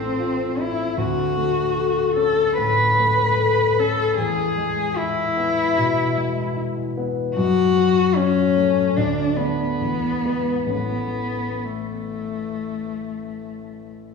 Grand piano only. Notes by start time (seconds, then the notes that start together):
Already playing: A1 A3 C4 F4
0.19 F4
0.58 C4
0.98 D2
1.37 A3
1.76 A4
2.16 C#4
2.57 A2
2.99 A3
3.40 A4
3.79 C#4
4.18 E2
4.57 G#3
4.97 E4
5.37 B3
5.78 B2
6.17 G#3
6.57 E4
6.97 B3
7.37 F#2
7.77 F#3
8.17 C#4
8.56 A3
8.97 D2
9.38 A3 D4
9.80 E2
10.25 G#3 B3
10.66 A1 E3 A3 C#4